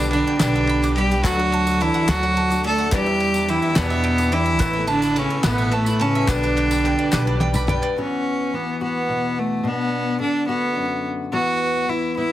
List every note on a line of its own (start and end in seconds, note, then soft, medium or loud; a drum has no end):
0.00 0.21 B1 medium
0.00 1.20 B1 medium
0.00 1.20 B2 medium
0.00 0.12 D3 medium
0.00 0.35 G3 medium
0.00 0.35 B3 medium
0.00 0.10 D4 loud
0.00 0.11 D4 medium
0.00 0.35 D4 medium
0.00 0.11 G4 medium
0.00 0.12 B4 medium
0.00 0.35 B4 medium
0.00 0.13 D5 medium
0.00 0.26 G5 medium
0.00 0.13 D6 medium
0.00 tambourine medium
0.11 0.39 D3 medium
0.11 0.39 B3 medium
0.11 0.38 D4 medium
0.11 0.39 D4 medium
0.11 0.40 G4 medium
0.11 0.41 B4 medium
0.11 0.68 B5 medium
0.11 ride medium
0.11 tambourine soft
0.27 0.54 G5 medium
0.39 1.24 B1 medium
0.39 0.93 D3 medium
0.39 1.18 G3 medium
0.39 1.18 B3 medium
0.39 0.54 B3 medium
0.39 0.92 D4 medium
0.39 1.19 D4 medium
0.39 0.55 D4 medium
0.39 0.54 G4 medium
0.39 1.19 B4 medium
0.39 0.53 B4 medium
0.39 0.97 D5 medium
0.39 snare loud
0.39 clap loud
0.39 ride medium
0.39 tambourine loud
0.54 0.83 D4 soft
0.54 0.83 G4 soft
0.54 0.81 B4 medium
0.54 1.11 G5 medium
0.54 clap soft
0.67 0.83 B5 medium
0.67 ride medium
0.82 0.96 D4 soft
0.82 0.97 G4 soft
0.82 0.96 B4 medium
0.82 0.98 D6 medium
0.82 clap soft
0.82 tambourine medium
0.96 1.23 G3 medium
0.96 1.23 B3 medium
0.96 1.24 D4 medium
0.96 1.23 G4 medium
0.96 1.24 G4 medium
0.96 1.26 B4 medium
0.96 1.25 B5 medium
0.96 clap soft
0.96 ride medium
1.11 1.25 G5 medium
1.11 clap soft
1.11 tambourine soft
1.23 2.88 D2 medium
1.23 1.89 D2 medium
1.23 1.38 D3 medium
1.23 2.88 D3 medium
1.23 2.02 F#3 medium
1.23 1.82 F#3 medium
1.23 2.02 A3 medium
1.23 1.39 A3 medium
1.23 2.03 D4 medium
1.23 1.37 D4 medium
1.23 1.83 F#4 loud
1.23 1.36 F#4 medium
1.23 2.03 A4 medium
1.23 1.81 D5 medium
1.23 kick loud
1.23 clap medium
1.23 ride medium
1.23 tambourine medium
1.37 1.67 A3 soft
1.37 1.66 D4 medium
1.37 1.64 F#4 medium
1.37 1.53 F#5 medium
1.52 1.80 A5 medium
1.52 ride medium
1.52 tambourine soft
1.65 1.79 A3 soft
1.65 1.80 D4 medium
1.65 1.80 F#4 medium
1.65 2.23 D6 medium
1.65 tambourine medium
1.80 2.07 D3 medium
1.80 2.10 E3 medium
1.80 2.07 A3 medium
1.80 2.08 D4 medium
1.80 2.11 E4 loud
1.80 2.09 F#4 medium
1.80 2.36 A5 medium
1.80 ride medium
1.80 tambourine soft
1.94 2.22 F#5 medium
2.07 2.92 D2 medium
2.07 2.22 D3 medium
2.07 2.86 F#3 medium
2.07 2.65 F#3 medium
2.07 2.86 A3 medium
2.07 2.23 A3 medium
2.07 2.87 D4 medium
2.07 2.22 D4 medium
2.07 2.65 F#4 loud
2.07 2.21 F#4 medium
2.07 2.87 A4 medium
2.07 2.64 D5 medium
2.07 snare loud
2.07 clap medium
2.07 ride medium
2.07 tambourine medium
2.22 2.51 A3 soft
2.22 2.50 D4 soft
2.22 2.48 F#4 medium
2.22 2.77 F#5 medium
2.22 tambourine soft
2.37 2.63 A5 medium
2.37 ride medium
2.50 2.63 A3 soft
2.50 2.64 D4 soft
2.50 2.64 F#4 medium
2.50 2.92 D6 medium
2.50 tambourine medium
2.63 2.92 D3 medium
2.63 2.92 A3 medium
2.63 2.92 D4 medium
2.63 2.93 F#4 medium
2.63 2.92 A4 loud
2.63 2.92 A5 medium
2.63 ride medium
2.78 2.92 F#5 medium
2.91 3.06 E2 medium
2.91 3.57 E2 medium
2.91 4.56 E2 medium
2.91 3.06 B2 medium
2.91 3.06 E3 medium
2.91 4.57 E3 medium
2.91 3.70 G3 medium
2.91 3.07 G3 medium
2.91 3.51 G3 loud
2.91 3.71 D4 medium
2.91 3.06 D4 medium
2.91 3.71 E4 medium
2.91 3.05 E4 medium
2.91 3.51 G4 loud
2.91 3.71 B4 medium
2.91 3.48 D5 medium
2.91 kick loud
2.91 clap loud
2.91 ride medium
2.91 tambourine medium
3.06 3.34 G3 soft
3.06 3.34 D4 soft
3.06 3.32 E4 medium
3.06 3.61 E5 medium
3.20 3.34 G5 medium
3.20 ride medium
3.20 tambourine soft
3.34 3.47 E3 soft
3.34 3.48 G3 medium
3.34 3.49 D4 medium
3.34 3.48 E4 medium
3.34 3.90 D6 medium
3.34 tambourine medium
3.48 3.76 E3 medium
3.48 3.77 E3 medium
3.48 3.76 G3 medium
3.48 3.77 D4 medium
3.48 3.79 E4 medium
3.48 3.77 E4 medium
3.48 4.02 G5 medium
3.48 ride medium
3.48 tambourine soft
3.62 3.89 E5 medium
3.76 3.90 E2 medium
3.76 4.60 E2 medium
3.76 4.34 B2 medium
3.76 3.91 B2 medium
3.76 3.91 E3 medium
3.76 4.55 G3 medium
3.76 3.91 G3 medium
3.76 4.35 B3 loud
3.76 4.55 D4 medium
3.76 3.90 D4 medium
3.76 4.55 E4 medium
3.76 3.89 E4 medium
3.76 4.55 B4 medium
3.76 4.32 D5 medium
3.76 snare loud
3.76 clap loud
3.76 ride medium
3.76 tambourine medium
3.90 4.19 E3 soft
3.90 4.18 G3 soft
3.90 4.18 D4 medium
3.90 4.17 E4 medium
3.90 4.44 E5 medium
3.90 tambourine soft
4.04 4.31 G5 medium
4.04 ride medium
4.18 4.31 E3 soft
4.18 4.32 G3 soft
4.18 4.33 D4 medium
4.18 4.32 E4 medium
4.18 4.60 D6 medium
4.18 tambourine medium
4.32 4.88 E3 medium
4.32 4.60 E3 medium
4.32 4.61 G3 medium
4.32 4.62 D4 medium
4.32 4.89 E4 loud
4.32 4.62 E4 medium
4.32 4.60 G5 medium
4.32 ride medium
4.46 4.60 E5 medium
4.59 5.25 A1 medium
4.59 6.24 A1 medium
4.59 4.75 A2 medium
4.59 6.25 A2 medium
4.59 4.75 E3 medium
4.59 5.38 A3 medium
4.59 4.75 A3 medium
4.59 5.39 B3 medium
4.59 4.75 B3 medium
4.59 5.39 E4 medium
4.59 4.73 E4 medium
4.59 5.16 B4 medium
4.59 5.39 B4 medium
4.59 kick loud
4.59 clap medium
4.59 ride medium
4.59 tambourine medium
4.73 5.04 A3 soft
4.73 5.03 B3 medium
4.73 5.01 E4 medium
4.73 5.29 E5 medium
4.88 5.17 D3 medium
4.88 5.20 D4 loud
4.88 5.15 A5 medium
4.88 ride medium
4.88 tambourine soft
5.02 5.16 A3 soft
5.02 5.17 B3 medium
5.02 5.17 E4 medium
5.02 5.58 B5 medium
5.02 tambourine medium
5.15 5.44 C#3 medium
5.15 5.45 E3 medium
5.15 5.45 A3 medium
5.15 5.46 B3 medium
5.15 5.45 C#4 loud
5.15 5.46 E4 medium
5.15 5.71 A5 medium
5.15 ride medium
5.15 tambourine soft
5.30 5.57 E5 medium
5.43 6.28 A1 medium
5.43 5.59 A2 medium
5.43 5.74 B2 medium
5.43 5.59 E3 medium
5.43 6.22 A3 medium
5.43 5.59 A3 medium
5.43 6.22 B3 medium
5.43 5.75 B3 loud
5.43 5.59 B3 medium
5.43 6.23 E4 medium
5.43 5.57 E4 medium
5.43 6.00 B4 medium
5.43 6.23 B4 medium
5.43 snare loud
5.43 clap medium
5.43 ride medium
5.43 tambourine loud
5.58 5.88 A3 soft
5.58 5.87 B3 medium
5.58 5.87 E4 medium
5.58 6.14 E5 medium
5.58 tambourine soft
5.71 6.02 A2 medium
5.71 6.03 A3 medium
5.71 6.00 A5 medium
5.71 ride medium
5.86 6.02 B3 soft
5.86 6.01 E4 medium
5.86 6.28 B5 medium
5.86 tambourine medium
5.90 6.01 A3 soft
5.99 6.31 C#3 medium
5.99 6.28 E3 medium
5.99 6.29 A3 medium
5.99 6.28 B3 medium
5.99 6.30 C#4 medium
5.99 6.29 A5 medium
5.99 ride medium
6.04 6.30 E4 medium
6.15 6.29 E5 medium
6.27 7.92 B1 medium
6.27 6.93 B1 loud
6.27 7.92 B2 medium
6.27 7.41 D3 medium
6.27 7.06 G3 medium
6.27 7.07 B3 medium
6.27 6.43 B3 medium
6.27 7.07 D4 medium
6.27 7.40 D4 loud
6.27 6.43 D4 medium
6.27 6.43 G4 medium
6.27 7.07 B4 medium
6.27 6.85 B4 medium
6.27 6.41 B4 medium
6.27 kick loud
6.27 clap loud
6.27 ride medium
6.27 tambourine medium
6.42 6.72 D4 soft
6.42 6.71 G4 soft
6.42 6.70 B4 medium
6.42 6.97 D5 medium
6.42 tambourine soft
6.57 6.84 G5 medium
6.57 clap soft
6.57 ride medium
6.71 6.84 D4 soft
6.71 6.84 G4 medium
6.71 6.85 B4 medium
6.71 7.27 B5 medium
6.71 clap soft
6.71 tambourine medium
6.84 7.10 B3 medium
6.84 7.12 D4 medium
6.84 7.12 G4 medium
6.84 7.13 B4 medium
6.84 7.40 G5 medium
6.84 clap soft
6.84 ride medium
6.99 7.26 D5 medium
7.11 7.77 B1 medium
7.11 7.90 G3 medium
7.11 7.26 B3 medium
7.11 7.90 B3 medium
7.11 7.91 D4 medium
7.11 7.27 D4 medium
7.11 7.26 G4 medium
7.11 7.69 B4 medium
7.11 7.24 B4 medium
7.11 7.91 D5 medium
7.11 snare medium
7.11 clap loud
7.11 tambourine medium
7.25 7.55 D4 medium
7.25 7.54 G4 medium
7.25 7.52 B4 medium
7.25 7.81 D5 medium
7.40 7.68 G5 medium
7.40 clap soft
7.40 high tom medium
7.53 7.67 D4 soft
7.53 7.68 G4 soft
7.53 7.68 B4 medium
7.53 7.97 B5 medium
7.53 mid tom medium
7.53 tambourine medium
7.67 7.96 B3 medium
7.67 7.96 D4 medium
7.67 7.97 G4 medium
7.67 7.97 B4 medium
7.67 7.97 G5 medium
7.67 mid tom loud
7.83 7.96 D5 medium
7.83 clap soft
7.96 9.61 E2 medium
7.96 8.52 E3 soft
7.96 11.33 B3 soft
7.96 8.56 C#4 medium
7.96 8.81 F#4 medium
8.53 9.61 E3 soft
8.53 8.82 B3 medium
8.81 9.41 B3 medium
8.81 10.48 F#4 medium
9.08 9.61 B2 soft
9.39 9.69 A3 medium
9.63 10.20 B2 medium
9.63 10.21 B3 medium
9.63 11.29 D4 medium
10.19 11.32 D3 soft
10.19 10.47 D4 medium
10.48 11.07 B3 medium
10.48 11.35 F#4 medium
10.76 11.29 F#2 medium
11.32 12.32 E2 medium
11.32 11.87 E3 medium
11.32 12.16 B3 medium
11.32 11.91 F#4 medium
11.88 12.32 E3 medium
11.88 12.17 E4 medium
12.17 12.32 B3 medium
12.17 12.32 E4 medium